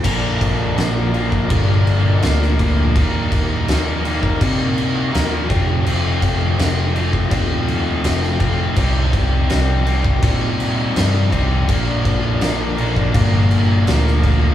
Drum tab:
CC |x-x-x-x-x-x-x-x-|x-x-x-x-x-x-x-x-|x-x-x-x-x-x-x-x-|x-x-x-x-x-x-x-x-|
SD |----o-------oo--|----o-------o---|----o-------oo--|----o-------o---|
BD |o-o----oo-----o-|o-o----oo-----o-|--o----oo-----o-|o-o----oo-----o-|

CC |x-x-x-x-x-x-x-x-|
SD |----o-------oo--|
BD |o-o----oo-----o-|